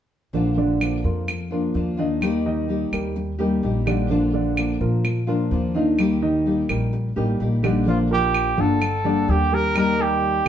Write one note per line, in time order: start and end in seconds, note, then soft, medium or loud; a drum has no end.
0.33 1.00 A#1 medium
0.33 0.53 D3 medium
0.33 0.79 F3 medium
0.33 0.80 A#3 medium
0.33 0.53 D4 medium
0.33 0.80 D4 medium
0.33 0.81 F4 medium
0.33 0.54 D5 medium
0.57 0.96 D3 medium
0.57 0.96 D4 medium
0.57 0.96 D5 medium
0.80 1.26 F3 soft
0.80 1.27 A#3 soft
0.80 1.27 D4 soft
0.80 1.28 F4 medium
0.80 claves medium
1.04 1.71 F2 medium
1.04 1.43 F3 medium
1.04 1.43 F4 medium
1.04 1.43 A#4 medium
1.28 muted nylon-string guitar stroke medium
1.28 claves medium
1.51 1.90 F3 medium
1.51 1.74 A#3 soft
1.51 1.74 D4 medium
1.51 1.74 F4 medium
1.51 1.90 F4 medium
1.51 1.90 A#4 medium
1.74 2.86 D#2 medium
1.74 1.97 F3 soft
1.74 1.98 A#3 soft
1.74 1.97 D4 soft
1.74 1.96 F4 soft
1.97 2.37 D#3 medium
1.97 2.21 A#3 medium
1.97 2.21 D4 medium
1.97 2.37 D#4 medium
1.97 2.20 F4 medium
1.97 2.38 D#5 medium
2.21 2.68 D#3 medium
2.21 2.67 G3 medium
2.21 2.68 A#3 medium
2.21 2.68 D#4 medium
2.21 2.69 G4 medium
2.21 claves medium
2.46 2.84 D#3 medium
2.46 2.84 D#4 medium
2.46 2.85 D#5 medium
2.68 3.15 G3 soft
2.68 3.15 A#3 medium
2.68 3.15 D#4 soft
2.68 3.16 G4 medium
2.92 3.59 D#2 medium
2.92 3.31 G3 medium
2.92 3.31 G4 medium
2.92 3.32 A#4 medium
2.92 claves medium
3.16 muted nylon-string guitar stroke medium
3.39 3.78 G3 medium
3.39 3.61 G3 medium
3.39 3.62 A#3 medium
3.39 3.62 D#4 medium
3.39 3.62 G4 medium
3.39 3.78 G4 medium
3.39 3.79 A#4 medium
3.63 4.75 A#1 medium
3.63 3.85 G3 soft
3.63 3.86 A#3 medium
3.63 3.86 D#4 medium
3.63 3.85 G4 medium
3.86 4.06 D3 medium
3.86 4.09 G3 medium
3.86 4.09 A#3 medium
3.86 4.06 D4 medium
3.86 4.09 D#4 medium
3.86 4.09 G4 medium
3.86 4.06 D5 medium
3.86 claves medium
4.09 4.30 D3 medium
4.09 4.55 F3 medium
4.09 4.56 A#3 medium
4.09 4.30 D4 medium
4.09 4.57 D4 medium
4.09 4.57 F4 medium
4.09 4.30 D5 medium
4.34 4.72 D3 medium
4.34 4.73 D4 medium
4.34 4.73 D5 medium
4.56 5.03 F3 medium
4.56 5.03 A#3 medium
4.56 5.03 D4 soft
4.56 5.04 F4 medium
4.56 claves medium
4.81 5.47 A#2 medium
4.81 5.19 F3 medium
4.81 5.20 F4 medium
4.81 5.20 A#4 medium
5.04 muted nylon-string guitar stroke medium
5.04 claves medium
5.27 5.66 F3 medium
5.27 5.51 A#3 soft
5.27 5.51 D4 medium
5.27 5.50 F4 medium
5.27 5.67 F4 medium
5.27 5.67 A#4 medium
5.51 6.63 D#2 medium
5.51 5.74 F3 soft
5.51 5.74 A#3 medium
5.51 5.75 D4 soft
5.51 5.73 F4 medium
5.75 6.14 D#3 medium
5.75 5.98 A#3 medium
5.75 5.98 D4 medium
5.75 6.14 D#4 medium
5.75 5.97 F4 medium
5.75 6.14 D#5 medium
5.98 6.44 D#3 medium
5.98 6.44 G3 medium
5.98 6.45 A#3 medium
5.98 6.45 D#4 medium
5.98 6.46 G4 medium
5.98 claves medium
6.22 6.61 D#3 medium
6.22 6.61 D#4 medium
6.22 6.61 D#5 medium
6.46 6.92 G3 soft
6.46 6.92 A#3 soft
6.46 6.92 D#4 soft
6.46 6.93 G4 soft
6.69 7.13 A#1 medium
6.69 7.08 G3 medium
6.69 7.08 G4 medium
6.69 7.08 A#4 medium
6.69 claves medium
6.93 muted nylon-string guitar stroke medium
7.16 7.38 A1 medium
7.16 7.55 G3 medium
7.16 7.38 G3 medium
7.16 7.39 A#3 medium
7.16 7.39 D#4 medium
7.16 7.39 G4 medium
7.16 7.55 G4 medium
7.16 7.55 A#4 medium
7.39 8.51 A#1 medium
7.39 7.62 G3 soft
7.39 7.63 A#3 medium
7.39 7.63 D#4 medium
7.39 7.62 G4 medium
7.63 7.83 D3 medium
7.63 7.86 G3 medium
7.63 7.86 A#3 medium
7.63 7.83 D4 medium
7.63 7.86 D#4 medium
7.63 7.86 G4 medium
7.63 7.83 D5 medium
7.63 claves soft
7.86 8.06 D3 medium
7.86 8.56 F3 medium
7.86 8.59 A#3 medium
7.86 8.06 D4 medium
7.86 8.57 D4 medium
7.86 7.99 F4 medium
7.86 8.56 F4 medium
7.86 8.07 D5 medium
8.11 8.49 F3 medium
8.11 8.49 F4 medium
8.11 8.62 G4 medium
8.11 8.49 A#4 medium
8.34 claves medium
8.57 9.24 G1 medium
8.57 8.96 D3 medium
8.57 8.80 A#3 medium
8.57 8.96 D4 medium
8.57 8.81 D4 medium
8.57 8.80 F4 medium
8.57 9.32 A4 medium
8.57 8.97 D5 medium
8.81 muted nylon-string guitar stroke medium
8.81 claves medium
9.04 9.43 D3 medium
9.04 9.27 G3 soft
9.04 9.28 A#3 medium
9.04 9.44 D4 medium
9.04 9.28 D4 medium
9.04 9.27 G4 medium
9.04 9.44 D5 medium
9.28 10.39 D#2 medium
9.28 9.74 G3 medium
9.28 9.75 A#3 medium
9.28 9.75 D4 medium
9.28 9.75 G4 medium
9.28 9.56 G4 medium
9.52 9.90 G3 medium
9.52 9.90 G4 medium
9.52 9.91 A#4 medium
9.52 9.77 A#4 medium
9.75 10.45 D#3 medium
9.75 10.45 G3 medium
9.75 10.45 A#3 medium
9.75 10.45 D#4 medium
9.75 10.44 G4 medium
9.75 10.03 A#4 loud
9.75 claves medium
9.99 10.37 G3 medium
9.99 10.37 G4 medium
9.99 10.48 G4 medium
9.99 10.38 A#4 medium